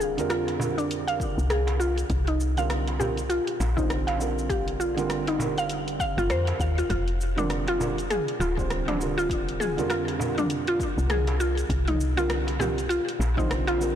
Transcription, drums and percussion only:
0.00 darbuka ka soft
0.00 shaker medium
0.18 closed hi-hat soft
0.18 shaker soft
0.30 cross-stick loud
0.30 closed hi-hat medium
0.30 shaker soft
0.48 closed hi-hat soft
0.48 darbuka ka medium
0.60 darbuka tek medium
0.60 darbuka dum medium
0.60 shaker medium
0.77 closed hi-hat soft
0.77 darbuka ka soft
0.77 shaker soft
0.91 closed hi-hat medium
0.91 shaker soft
1.08 closed hi-hat soft
1.20 kick loud
1.20 shaker medium
1.39 shaker soft
1.50 cross-stick medium
1.50 closed hi-hat medium
1.50 shaker soft
1.67 closed hi-hat soft
1.67 darbuka tek medium
1.81 shaker medium
1.98 closed hi-hat soft
1.98 shaker soft
2.10 kick loud
2.10 closed hi-hat medium
2.10 shaker soft
2.27 closed hi-hat soft
2.40 shaker medium
2.57 closed hi-hat soft
2.57 darbuka tek soft
2.57 shaker soft
2.70 cross-stick loud
2.70 closed hi-hat medium
2.70 shaker soft
2.88 closed hi-hat soft
2.88 darbuka ka medium
3.00 darbuka tek medium
3.00 darbuka dum loud
3.00 shaker medium
3.17 closed hi-hat soft
3.17 shaker soft
3.30 closed hi-hat medium
3.30 shaker soft
3.47 closed hi-hat soft
3.60 darbuka tek medium
3.60 shaker medium
3.78 kick loud
3.78 shaker soft
3.90 cross-stick medium
3.90 closed hi-hat medium
3.90 shaker soft
4.08 closed hi-hat soft
4.08 darbuka tek medium
4.21 shaker medium
4.39 shaker soft
4.50 kick loud
4.50 closed hi-hat medium
4.50 shaker soft
4.68 closed hi-hat soft
4.81 darbuka ka soft
4.81 shaker medium
4.98 closed hi-hat soft
4.98 shaker soft
5.10 cross-stick medium
5.10 closed hi-hat medium
5.10 shaker soft
5.27 closed hi-hat soft
5.27 darbuka ka medium
5.39 darbuka tek medium
5.39 darbuka dum medium
5.39 shaker medium
5.57 closed hi-hat soft
5.57 darbuka ka soft
5.57 shaker soft
5.69 closed hi-hat medium
5.69 shaker soft
5.88 closed hi-hat soft
6.00 kick loud
6.00 shaker medium
6.19 shaker soft
6.30 cross-stick medium
6.30 closed hi-hat medium
6.30 shaker soft
6.47 closed hi-hat soft
6.47 darbuka tek medium
6.60 kick medium
6.60 shaker medium
6.78 closed hi-hat soft
6.78 shaker soft
6.90 kick loud
6.90 closed hi-hat medium
6.90 shaker soft
7.08 closed hi-hat soft
7.21 shaker medium
7.37 closed hi-hat soft
7.37 mid tom medium
7.37 darbuka tek soft
7.37 shaker soft
7.50 cross-stick medium
7.50 closed hi-hat medium
7.50 shaker soft
7.67 closed hi-hat soft
7.67 darbuka ka medium
7.81 darbuka tek medium
7.81 darbuka dum medium
7.81 shaker medium
7.98 closed hi-hat soft
7.98 shaker soft
8.11 closed hi-hat medium
8.11 mid tom medium
8.11 shaker soft
8.28 closed hi-hat soft
8.41 darbuka tek medium
8.41 shaker medium
8.57 kick loud
8.57 shaker soft
8.70 cross-stick medium
8.70 closed hi-hat medium
8.70 shaker soft
8.88 closed hi-hat soft
8.88 mid tom medium
8.88 darbuka tek medium
9.01 shaker medium
9.19 shaker soft
9.30 kick loud
9.30 closed hi-hat medium
9.30 shaker soft
9.49 closed hi-hat soft
9.60 mid tom medium
9.60 darbuka ka soft
9.60 shaker medium
9.78 closed hi-hat soft
9.78 shaker soft
9.90 cross-stick medium
9.90 closed hi-hat medium
9.90 shaker soft
10.08 closed hi-hat soft
10.08 darbuka ka medium
10.20 darbuka tek medium
10.20 darbuka dum medium
10.20 shaker medium
10.38 closed hi-hat soft
10.38 mid tom medium
10.38 darbuka ka soft
10.38 shaker soft
10.50 closed hi-hat medium
10.50 shaker soft
10.67 closed hi-hat soft
10.80 kick loud
10.80 shaker medium
10.98 shaker soft
11.10 cross-stick medium
11.10 closed hi-hat medium
11.10 mid tom medium
11.10 shaker soft
11.27 closed hi-hat soft
11.27 darbuka tek medium
11.40 shaker medium
11.57 closed hi-hat soft
11.57 shaker soft
11.70 kick loud
11.70 closed hi-hat medium
11.70 shaker soft
11.88 closed hi-hat soft
11.88 mid tom medium
12.01 shaker medium
12.17 closed hi-hat soft
12.17 darbuka tek soft
12.17 shaker soft
12.30 cross-stick loud
12.30 closed hi-hat medium
12.30 shaker soft
12.47 closed hi-hat soft
12.47 darbuka ka medium
12.59 mid tom medium
12.59 darbuka tek medium
12.59 darbuka dum medium
12.59 shaker medium
12.78 closed hi-hat soft
12.78 shaker soft
12.91 closed hi-hat medium
12.91 shaker soft
13.09 closed hi-hat soft
13.20 darbuka tek medium
13.20 shaker medium
13.37 kick medium
13.37 mid tom medium
13.37 shaker soft
13.51 cross-stick medium
13.51 closed hi-hat medium
13.51 shaker soft
13.68 closed hi-hat soft
13.68 darbuka tek medium
13.81 shaker medium

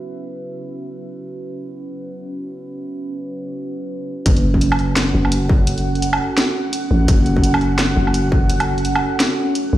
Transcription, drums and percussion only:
4.26 kick loud
4.26 closed hi-hat medium
4.37 closed hi-hat soft
4.54 kick medium
4.61 closed hi-hat medium
4.72 low woodblock medium
4.79 open hi-hat soft
4.96 snare loud
4.96 closed hi-hat medium
5.25 low woodblock soft
5.32 closed hi-hat medium
5.49 kick loud
5.67 closed hi-hat medium
5.78 closed hi-hat soft
5.95 open hi-hat soft
6.02 closed hi-hat medium
6.13 low woodblock medium
6.38 snare loud
6.38 closed hi-hat medium
6.73 closed hi-hat medium
7.08 kick loud
7.08 closed hi-hat medium
7.26 closed hi-hat soft
7.37 kick medium
7.44 closed hi-hat medium
7.54 low woodblock medium
7.61 open hi-hat soft
7.79 snare loud
7.79 closed hi-hat medium
8.07 low woodblock soft
8.14 closed hi-hat medium
8.32 kick loud
8.50 closed hi-hat medium
8.60 closed hi-hat soft
8.60 low woodblock medium
8.78 open hi-hat soft
8.85 closed hi-hat medium
8.95 low woodblock medium
9.20 snare loud
9.20 closed hi-hat medium
9.55 closed hi-hat medium

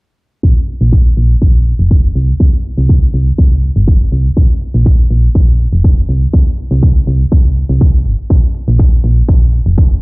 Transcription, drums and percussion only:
0.43 kick loud
0.43 closed hi-hat soft
0.68 closed hi-hat medium
0.81 closed hi-hat soft
0.92 kick loud
0.92 closed hi-hat soft
1.05 closed hi-hat soft
1.17 closed hi-hat medium
1.30 closed hi-hat soft
1.42 kick loud
1.42 closed hi-hat medium
1.55 closed hi-hat soft
1.66 closed hi-hat medium
1.79 closed hi-hat soft
1.91 kick loud
1.91 closed hi-hat soft
2.04 closed hi-hat soft
2.15 closed hi-hat medium
2.28 closed hi-hat soft
2.40 kick loud
2.40 closed hi-hat soft
2.53 closed hi-hat soft
2.65 closed hi-hat medium
2.78 closed hi-hat soft
2.89 kick loud
2.89 closed hi-hat soft
3.02 closed hi-hat soft
3.14 closed hi-hat medium
3.27 closed hi-hat soft
3.38 kick loud
3.38 closed hi-hat soft
3.51 closed hi-hat soft
3.63 closed hi-hat medium
3.76 closed hi-hat soft
3.88 kick loud
3.88 closed hi-hat soft
4.01 closed hi-hat soft
4.12 closed hi-hat medium
4.25 closed hi-hat soft
4.37 kick loud
4.37 closed hi-hat soft
4.50 closed hi-hat soft
4.61 closed hi-hat medium
4.74 closed hi-hat soft
4.86 kick loud
4.86 closed hi-hat soft
4.99 closed hi-hat soft
5.11 closed hi-hat medium
5.23 closed hi-hat soft
5.35 kick loud
5.35 closed hi-hat soft
5.48 closed hi-hat soft
5.60 closed hi-hat medium
5.73 closed hi-hat soft
5.84 kick loud
5.84 closed hi-hat soft
5.97 closed hi-hat soft
6.09 closed hi-hat medium
6.22 closed hi-hat soft
6.33 kick loud
6.33 closed hi-hat soft
6.46 closed hi-hat soft
6.58 closed hi-hat medium
6.71 closed hi-hat soft
6.83 kick loud
6.83 closed hi-hat soft
6.96 closed hi-hat soft
7.07 closed hi-hat medium
7.20 closed hi-hat soft
7.32 kick loud
7.32 closed hi-hat soft
7.45 closed hi-hat soft
7.56 closed hi-hat medium
7.69 closed hi-hat soft
7.81 kick loud
7.81 closed hi-hat soft
7.94 closed hi-hat soft
8.06 closed hi-hat medium
8.19 closed hi-hat soft
8.30 kick loud
8.30 closed hi-hat soft
8.43 closed hi-hat soft
8.55 closed hi-hat medium
8.68 closed hi-hat soft
8.79 kick loud
8.79 closed hi-hat soft
8.92 closed hi-hat soft
9.04 closed hi-hat medium
9.17 closed hi-hat soft
9.28 kick loud
9.28 closed hi-hat soft
9.41 closed hi-hat soft
9.53 closed hi-hat medium
9.66 closed hi-hat soft
9.78 kick loud
9.78 closed hi-hat soft
9.91 closed hi-hat soft

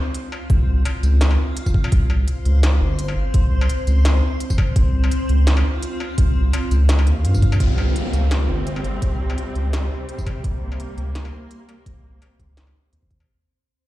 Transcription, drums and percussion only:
0.14 closed hi-hat medium
0.32 struck metal medium
0.50 kick loud
0.50 closed hi-hat medium
0.85 closed hi-hat medium
0.85 struck metal medium
1.03 closed hi-hat soft
1.03 tambourine soft
1.21 snare loud
1.21 closed hi-hat medium
1.31 struck metal soft
1.57 closed hi-hat medium
1.66 kick medium
1.66 tambourine medium
1.74 kick loud
1.84 struck metal medium
1.92 kick loud
1.92 closed hi-hat medium
2.10 struck metal medium
2.28 closed hi-hat medium
2.45 closed hi-hat soft
2.63 snare loud
2.63 closed hi-hat medium
2.63 struck metal medium
2.99 closed hi-hat medium
3.08 struck metal medium
3.34 kick loud
3.34 closed hi-hat medium
3.61 struck metal medium
3.69 closed hi-hat medium
3.87 closed hi-hat soft
3.87 tambourine soft
4.05 snare loud
4.05 closed hi-hat medium
4.05 struck metal medium
4.40 closed hi-hat medium
4.50 kick medium
4.50 tambourine medium
4.58 kick loud
4.58 struck metal medium
4.76 kick loud
4.76 closed hi-hat medium
5.04 struck metal medium
5.11 closed hi-hat medium
5.29 closed hi-hat soft
5.47 snare loud
5.47 closed hi-hat medium
5.57 struck metal medium
5.82 closed hi-hat medium
6.00 struck metal medium
6.18 kick loud
6.18 closed hi-hat medium
6.53 closed hi-hat medium
6.53 struck metal medium
6.71 closed hi-hat soft
6.71 tambourine soft
6.89 snare loud
6.89 closed hi-hat medium
6.99 struck metal medium
7.07 closed hi-hat soft
7.25 closed hi-hat medium
7.34 kick medium
7.34 tambourine medium
7.42 kick loud
7.42 closed hi-hat soft
7.52 tambourine soft
7.52 struck metal medium
7.60 kick loud
7.60 closed hi-hat medium
7.78 struck metal medium
7.96 closed hi-hat medium
8.13 closed hi-hat soft
8.13 tambourine soft
8.31 snare loud
8.31 closed hi-hat medium
8.31 struck metal medium
8.67 closed hi-hat medium
8.76 struck metal medium
8.84 closed hi-hat soft
9.02 kick loud
9.02 closed hi-hat medium
9.30 struck metal medium
9.38 closed hi-hat medium
9.55 closed hi-hat soft
9.73 snare loud
9.73 closed hi-hat medium
9.73 struck metal medium
10.09 closed hi-hat medium
10.18 kick medium
10.18 tambourine medium
10.26 kick loud
10.26 closed hi-hat soft
10.26 struck metal medium
10.44 kick loud
10.44 closed hi-hat medium
10.72 struck metal soft
10.80 closed hi-hat medium
10.98 closed hi-hat soft
11.15 snare loud
11.15 closed hi-hat medium
11.25 struck metal medium
11.51 closed hi-hat medium
11.69 closed hi-hat soft
11.69 struck metal soft
11.86 kick loud
11.86 closed hi-hat medium
12.22 closed hi-hat medium
12.22 struck metal medium
12.39 kick medium
12.39 closed hi-hat soft
12.57 snare loud
12.57 closed hi-hat medium
12.67 struck metal soft
12.93 closed hi-hat medium
13.03 kick medium
13.11 kick medium
13.11 closed hi-hat soft
13.20 struck metal medium

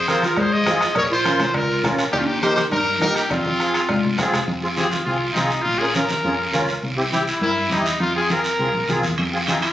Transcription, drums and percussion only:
0.08 bombo rim medium
0.08 high conga medium
0.08 short guiro medium
0.22 bombo rim medium
0.22 high conga medium
0.22 short guiro medium
0.36 bombo low medium
0.36 bombo rim medium
0.36 cowbell medium
0.36 long guiro medium
0.66 bombo rim medium
0.66 high conga medium
0.66 low timbale medium
0.66 short guiro medium
0.81 bombo rim medium
0.81 short guiro medium
0.95 bombo low medium
0.95 bombo rim medium
0.95 cowbell medium
0.95 long guiro medium
1.25 bombo rim medium
1.25 high conga medium
1.25 short guiro medium
1.39 bombo rim medium
1.39 high conga medium
1.39 low conga medium
1.39 short guiro medium
1.54 bombo low medium
1.54 bombo rim medium
1.54 cowbell medium
1.54 long guiro medium
1.84 bombo low medium
1.84 bombo rim medium
1.84 high conga medium
1.84 low conga medium
1.84 low timbale medium
1.84 short guiro medium
1.99 bombo rim medium
1.99 short guiro medium
2.13 bombo low medium
2.13 bombo rim medium
2.13 cowbell loud
2.13 long guiro medium
2.42 bombo rim medium
2.42 high conga medium
2.42 short guiro medium
2.57 bombo rim medium
2.57 high conga medium
2.57 short guiro medium
2.71 bombo low medium
2.71 bombo rim medium
2.71 cowbell medium
2.71 long guiro medium
3.01 bombo rim medium
3.01 high conga medium
3.01 low timbale medium
3.01 short guiro medium
3.16 bombo rim medium
3.16 short guiro medium
3.30 bombo low medium
3.30 bombo rim medium
3.30 cowbell medium
3.30 high conga medium
3.30 long guiro medium
3.46 high conga medium
3.60 bombo rim medium
3.60 short guiro medium
3.74 bombo rim medium
3.74 short guiro medium
3.89 bombo low medium
3.89 bombo rim medium
3.89 cowbell medium
3.89 low conga medium
3.89 long guiro medium
4.04 low conga medium
4.18 bombo low medium
4.18 bombo rim medium
4.18 low conga medium
4.18 low timbale medium
4.18 short guiro medium
4.33 bombo rim medium
4.33 low conga medium
4.33 short guiro medium
4.48 long guiro medium
4.77 high conga medium
4.77 short guiro medium
4.92 high conga medium
4.92 short guiro medium
5.07 long guiro medium
5.36 high conga medium
5.36 short guiro medium
5.50 short guiro medium
5.66 long guiro medium
5.94 high conga medium
5.94 short guiro medium
6.09 high conga medium
6.09 short guiro medium
6.23 long guiro medium
6.53 high conga medium
6.53 short guiro medium
6.69 short guiro medium
6.83 long guiro medium
7.12 high conga medium
7.12 short guiro medium
7.27 short guiro medium
7.42 long guiro medium
7.71 high conga medium
7.71 short guiro medium
7.86 short guiro medium
8.01 long guiro medium
8.30 high conga medium
8.30 short guiro medium
8.44 short guiro medium
8.60 long guiro medium
8.88 high conga medium
8.88 short guiro medium
9.03 short guiro medium
9.18 high timbale medium
9.18 long guiro medium
9.47 high conga medium
9.47 high timbale medium
9.47 short guiro medium
9.62 high timbale medium
9.62 short guiro medium

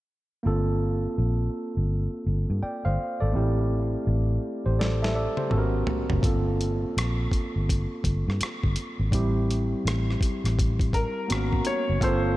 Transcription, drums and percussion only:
4.81 snare soft
5.04 snare soft
5.37 high tom medium
5.51 mid tom medium
5.87 floor tom medium
6.10 floor tom medium
6.23 kick medium
6.23 closed hi-hat medium
6.61 closed hi-hat medium
6.98 cross-stick medium
6.98 closed hi-hat medium
7.32 kick medium
7.32 closed hi-hat medium
7.69 kick medium
7.69 closed hi-hat medium
8.04 kick medium
8.04 closed hi-hat medium
8.30 cross-stick soft
8.41 cross-stick medium
8.41 closed hi-hat medium
8.64 kick medium
8.76 closed hi-hat medium
9.12 kick medium
9.12 closed hi-hat medium
9.51 closed hi-hat soft
9.87 cross-stick medium
9.87 closed hi-hat medium
10.11 cross-stick soft
10.21 kick medium
10.21 closed hi-hat medium
10.45 cross-stick soft
10.45 closed hi-hat soft
10.59 kick medium
10.59 closed hi-hat medium
10.80 kick medium
10.80 closed hi-hat soft
10.93 kick medium
10.93 closed hi-hat medium
11.30 cross-stick medium
11.30 closed hi-hat medium
11.53 kick medium
11.65 closed hi-hat medium
12.01 kick loud
12.01 closed hi-hat medium

